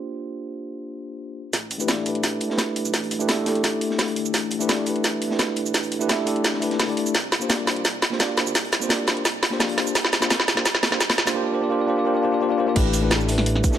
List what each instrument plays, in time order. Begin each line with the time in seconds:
Already playing: tine electric piano A#3 D4 F4 G4 C5
1.53 detuned saw bass A1, kick, snare, closed hi-hat, shaker
1.71 closed hi-hat, shaker
1.78 tine electric piano A3 D4 E4 G4 B4, shaker
1.87 tine electric piano A3 D4 E4 G4 D5, kick, snare, closed hi-hat, shaker
2.03 tine electric piano A3 D4 E4, closed hi-hat, shaker
2.07 tine electric piano G4 B4
2.15 closed hi-hat
2.23 kick, snare, closed hi-hat, shaker
2.41 closed hi-hat
2.47 tine electric piano A3 D4 E4, snare
2.52 tine electric piano G4 B4
2.58 kick, snare, closed hi-hat, shaker
2.76 detuned saw bass E1, closed hi-hat
2.85 detuned saw bass B1, shaker
2.94 detuned saw bass A1, kick, snare, closed hi-hat, shaker
3.03 closed hi-hat
3.11 closed hi-hat, shaker
3.19 tine electric piano A3 D4 E4 G4 B4, shaker
3.27 tine electric piano A3 D4 E4 G4 E5, kick, snare, closed hi-hat, shaker
3.43 tine electric piano A3 D4 E4, snare, closed hi-hat, shaker
3.48 tine electric piano G4 A4
3.55 closed hi-hat
3.64 kick, snare, closed hi-hat, shaker
3.81 closed hi-hat
3.90 snare
3.99 detuned saw bass D2, kick, snare, closed hi-hat, open hi-hat, shaker
4.08 closed hi-hat
4.16 closed hi-hat
4.26 shaker
4.34 detuned saw bass A1, kick, snare, closed hi-hat, shaker
4.51 closed hi-hat, shaker
4.59 tine electric piano A3 D4 E4 G4 B4, shaker
4.67 tine electric piano A3 D4 E4 G4 D5, kick, snare, closed hi-hat, shaker
4.83 tine electric piano A3 D4 E4, closed hi-hat, shaker
4.88 tine electric piano G4 B4
4.96 closed hi-hat
5.04 kick, snare, closed hi-hat, shaker
5.22 detuned saw bass E1, closed hi-hat
5.28 tine electric piano A3 D4 E4, snare
5.32 tine electric piano G4 B4
5.39 kick, snare, closed hi-hat, shaker
5.56 detuned saw bass A1, closed hi-hat
5.66 shaker
5.74 detuned saw bass A1, kick, snare, closed hi-hat, shaker
5.83 closed hi-hat, shaker
5.92 closed hi-hat, shaker
5.99 tine electric piano A3 D4 E4 G4 B4, shaker
6.08 tine electric piano A3 D4 E4 G4 E5, kick, snare, closed hi-hat, shaker
6.25 tine electric piano A3 D4 E4 G4 A4, closed hi-hat, shaker
6.36 closed hi-hat
6.44 kick, snare, closed hi-hat, shaker
6.53 snare
6.60 detuned saw bass G1, tine electric piano A3 D4 E4 G4 B4, closed hi-hat, shaker
6.71 snare, closed hi-hat
6.80 detuned saw bass D2, kick, snare, closed hi-hat, open hi-hat, shaker
6.87 tine electric piano A3 D4 E4 G4 D5, closed hi-hat
6.97 detuned saw bass E1, closed hi-hat
7.06 shaker
7.15 detuned saw bass C2, kick, snare, closed hi-hat, shaker
7.32 snare, closed hi-hat, shaker
7.40 tine electric piano A#3 D4 F4 G4 C5, shaker
7.48 tine electric piano A#3 D4 F4 G4 D5, kick, snare, closed hi-hat, shaker
7.64 tine electric piano A#3 D4 F4, snare, closed hi-hat, shaker
7.69 tine electric piano G4 C5
7.76 closed hi-hat
7.85 kick, snare, closed hi-hat, shaker
8.02 snare, closed hi-hat
8.10 tine electric piano A#3 D4 F4 G4 C5, snare
8.19 tine electric piano A#3 D4 F4 G4 D5, kick, snare, closed hi-hat, shaker
8.35 detuned saw bass G1, tine electric piano A#3 D4 F4, snare, closed hi-hat
8.39 tine electric piano G4 C5
8.46 detuned saw bass D2, shaker
8.55 detuned saw bass C2, kick, snare, closed hi-hat, shaker
8.65 closed hi-hat
8.72 snare, closed hi-hat, shaker
8.80 tine electric piano A#3 D4 F4 G4 C5, shaker
8.89 tine electric piano A#3 D4 F4 G4 D5, kick, snare, closed hi-hat, shaker
9.05 tine electric piano A#3 D4 F4, snare, closed hi-hat, shaker
9.10 tine electric piano G4 C5
9.17 closed hi-hat
9.25 kick, snare, closed hi-hat, shaker
9.43 snare, closed hi-hat
9.50 tine electric piano A#3 D4 F4 G4 C5, snare
9.59 detuned saw bass F2, tine electric piano A#3 D4 F4 G4 D5, kick, snare, closed hi-hat, open hi-hat, shaker
9.69 closed hi-hat
9.75 tine electric piano A#3 D4 F4, snare, closed hi-hat
9.79 tine electric piano G4 C5
9.87 shaker
9.95 detuned saw bass C2, kick, snare, closed hi-hat, shaker
10.05 snare
10.12 snare, closed hi-hat, shaker
10.20 tine electric piano A#3 D4 F4 G4 C5, snare, shaker
10.30 kick, snare, closed hi-hat, shaker
10.40 snare
10.48 snare, closed hi-hat, shaker
10.55 tine electric piano A#3 D4 F4 G4 C5, snare, closed hi-hat
10.65 kick, snare, closed hi-hat, shaker
10.75 snare
10.83 detuned saw bass G1, snare, closed hi-hat
10.91 tine electric piano A#3 D4 F4 G4 C5, snare
11.00 kick, snare, closed hi-hat, shaker
11.09 snare, closed hi-hat
11.18 detuned saw bass C2, snare, closed hi-hat
11.26 tine electric piano A#3 D4 F4 G4 C5, snare, closed hi-hat, shaker
11.34 tine electric piano A#3 D4 F4 G4 C5
11.43 tine electric piano A#3 D4 F4 G4 D5
11.52 tine electric piano A#3 D4 F4 G4 C5
11.61 tine electric piano A#3 D4 F4 G4 D5
11.69 tine electric piano A#3 D4 F4 G4 C5
11.78 tine electric piano A#3 D4 F4 G4 D5
11.87 tine electric piano A#3 D4 F4 G4 C5
11.96 tine electric piano A#3 D4 F4 G4 D5
12.04 tine electric piano A#3 D4 F4 G4 C5
12.14 tine electric piano A#3 D4 F4 G4 D5
12.22 tine electric piano A#3 D4 F4 G4 C5
12.31 tine electric piano A#3 D4 F4 G4 D5
12.40 tine electric piano A#3 D4 F4 G4 C5
12.49 tine electric piano A#3 D4 F4 G4 D5
12.57 tine electric piano A#3 D4 F4 G4 C5
12.66 tine electric piano A#3 D4 F4 G4 D5
12.75 detuned saw bass A1, tine electric piano A3 D4 E4 G4 B4, kick, closed hi-hat, crash
12.94 closed hi-hat, shaker
13.02 tine electric piano A3 D4 E4 G4 B4
13.10 tine electric piano A3 D4 E4 G4 D5, snare, closed hi-hat
13.20 shaker
13.26 tine electric piano A3 D4 E4, closed hi-hat, open hi-hat, shaker
13.30 tine electric piano G4 B4
13.38 snare
13.46 closed hi-hat
13.55 snare
13.64 kick, closed hi-hat, shaker
13.70 tine electric piano A3 D4 E4, snare, shaker
13.74 tine electric piano G4